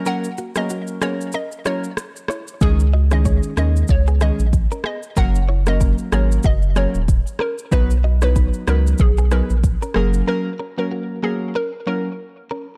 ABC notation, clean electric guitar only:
X:1
M:4/4
L:1/16
Q:"Swing 16ths" 1/4=94
K:F#mix
V:1 name="Clean electric guitar"
[CA] z [A,F] [B,G] [A,F] z [B,G] z [CA] z [Ec] z3 [Ec] z | z2 [Fd] [Ec] [Gc] z [CA] z2 [B,G] [B,G] z2 [CA] [B,G] z | [CA] z [Ec] [CA] [CA] z [B,G] z [A,F] z [B,G] z3 [CA] z | z2 [Fd] [Ec] [DB] z [CA] z2 [B,G] [B,G] z2 [CA] [CG] z |
[CA] z [CA] [A,F] [A,F] z [B,G] z [CA] z [Ec] z3 [CA] z |]